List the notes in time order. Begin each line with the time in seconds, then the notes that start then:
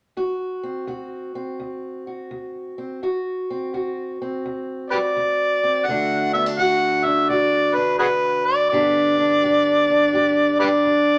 0.17 D2 F#4
0.63 C4
0.87 D2 F#4
1.35 C4
1.60 D2
2.07 F#4
2.31 D2
2.78 C4
3.03 D2 F#4
3.50 C4
3.74 D2 F#4
4.22 C4
4.46 D2
4.91 F#4 G4 B4 D5
5.16 D2
5.64 C4
5.86 D2 D3 A3 D4 F#5
5.91 F#4
6.34 B3 E5
6.46 D4
6.59 D2 F#4 F#5
7.05 D4 E5
7.29 D2 F#4 D5
7.75 D4 B4
7.99 D2 F#4 G#4 B4
8.46 D5
8.70 G2 D3 B3 D4 D5
8.74 G4
9.19 D4
9.43 G2 G4
9.90 D4
10.13 G2 G4
10.60 D4 G4 B4 D5
10.85 G2